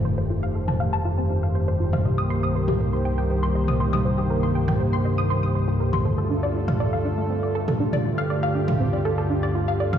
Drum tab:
T2 |-----o---------o|-----o-------o-o|-----o---------o|-----o-------o-o|

T2 |-----o---------o|